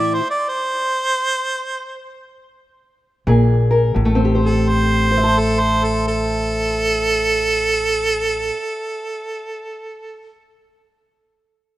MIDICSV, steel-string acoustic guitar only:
0, 0, Header, 1, 2, 480
1, 0, Start_track
1, 0, Key_signature, 0, "minor"
1, 0, Tempo, 547445
1, 748, Tempo, 578035
1, 1220, Time_signature, 4, 2, 24, 8
1, 1708, Tempo, 630252
1, 2668, Tempo, 706714
1, 8448, End_track
2, 0, Start_track
2, 0, Title_t, "Steel-string acoustic guitar"
2, 0, Program_c, 0, 25
2, 0, Note_on_c, 0, 45, 76
2, 0, Note_on_c, 0, 52, 76
2, 0, Note_on_c, 0, 64, 70
2, 167, Note_off_c, 0, 45, 0
2, 167, Note_off_c, 0, 52, 0
2, 167, Note_off_c, 0, 64, 0
2, 2667, Note_on_c, 0, 46, 75
2, 2675, Note_on_c, 0, 68, 62
2, 2965, Note_on_c, 0, 70, 64
2, 3112, Note_off_c, 0, 46, 0
2, 3115, Note_off_c, 0, 70, 0
2, 3116, Note_off_c, 0, 68, 0
2, 3126, Note_on_c, 0, 45, 65
2, 3200, Note_on_c, 0, 57, 65
2, 3267, Note_on_c, 0, 60, 65
2, 3332, Note_on_c, 0, 67, 64
2, 3401, Note_on_c, 0, 72, 62
2, 3915, Note_off_c, 0, 60, 0
2, 3917, Note_off_c, 0, 72, 0
2, 3917, Note_on_c, 0, 72, 65
2, 3957, Note_off_c, 0, 67, 0
2, 3960, Note_on_c, 0, 76, 71
2, 4003, Note_on_c, 0, 81, 74
2, 6232, Note_off_c, 0, 45, 0
2, 6305, Note_off_c, 0, 57, 0
2, 7022, Note_off_c, 0, 72, 0
2, 7065, Note_off_c, 0, 76, 0
2, 7108, Note_off_c, 0, 81, 0
2, 8448, End_track
0, 0, End_of_file